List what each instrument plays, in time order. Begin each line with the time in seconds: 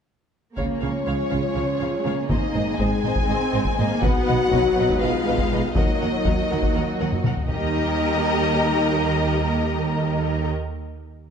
0.56 double bass section C#2, cello section C#3, trombone section F3 C#4, viola section A#3, string section C#4 F4 G#4 C#5, french horn section C#4, violin section C#5 F5, taiko
0.82 double bass section C#2, cello section C#3, violin section C#5 F5
1.06 double bass section C#2, cello section C#3, viola section G#3, violin section C#5 F5
1.30 double bass section C#2, cello section C#3, violin section C#5 F5
1.54 double bass section C#2, cello section C#3, viola section F3, violin section C#5 F5
1.80 double bass section C#2, cello section C#3, violin section C#5 F5
2.05 double bass section C#2, cello section C#3, viola section A#3, violin section C#5 F5
2.28 double bass section G#1, cello section G#2, trombone section D#3 C4, string section C4 D#4 D#5, french horn section D#4, violin section C5 D#5, taiko
2.54 double bass section G#1, cello section G#2, violin section C5 D#5
2.78 double bass section G#1, cello section G#2, viola section G#3, french horn section G#4, violin section C5 D#5 G#5, taiko
3.04 double bass section G#1, cello section G#2, violin section C5 D#5
3.15 taiko
3.28 double bass section G#1, cello section G#2, viola section C4, violin section C5 D#5
3.53 double bass section G#1, cello section G#2, violin section C5 D#5
3.65 taiko
3.78 double bass section G#1, cello section G#2, viola section A#3, violin section C5 D#5
4.02 double bass section B1, cello section B2, trombone section B3, viola section B3, string section B3 B4, french horn section F#4, violin section B4 D#5 F#5, taiko
4.27 double bass section B1, cello section B2, violin section B4 D#5
4.51 double bass section B1, cello section B2, viola section F#3, violin section B4 D#5, taiko
4.77 double bass section B1, cello section B2, violin section B4 D#5
4.89 taiko
5.00 double bass section B1, cello section B2, viola section G#3, french horn section F4, violin section B4 D#5 F5
5.27 double bass section B1, cello section B2, violin section B4 D#5
5.38 taiko
5.52 double bass section B1, cello section B2, violin section B4 D#5
5.75 double bass section D#2, cello section D#3, viola section F#3, trombone section F#3 A#3, string section A#3 F#4, french horn section D#4, violin section A#4 D#5 F#5, taiko
6.00 double bass section D#2, cello section D#3, violin section A#4 F#5
6.24 double bass section D#2, cello section D#3, violin section A#4 F#5, taiko
6.49 double bass section D#2, cello section D#3, violin section A#4 F#5
6.63 taiko
6.74 double bass section D#2, cello section D#3, violin section A#4 F#5
6.99 double bass section D#2, cello section D#3, violin section A#4 F#5
7.12 taiko low-mid
7.24 double bass section D#2, cello section D#3, violin section A#4 F#5, taiko mid
7.37 taiko low
7.49 double bass section D#2, cello section D#3, trombone section G3 A#3, string section A#3 D#4 G4 D#5, french horn section D#4, viola section G4 A#4, violin section D#5 A#5, taiko low